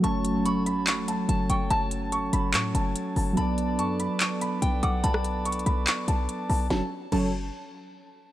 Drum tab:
CC |------------------------------------------------|------------------------------------------------|------------------------------------------------|------------------------------------------------|
HH |x-----x-----x-----x-----x-----x-----x-----x-----|x-----x-----x-----x-----x-----x-----x-----o-----|x-----x-----x-----x-----x-----x-----x-----x-----|x-----x-----x-x-x-x-----x-----x-----x-----o-----|
CP |------------------------x-----------------------|------------------------x-----------------------|------------------------x-----------------------|------------------------x-----------------------|
SD |------------------------------------------------|------------------------------------------------|------------------------------------------------|---r--------------------------------------------|

CC |------------x-----------------------------------|
HH |------------------------------------------------|
CP |------------------------------------------------|
SD |o-----------------------------------------------|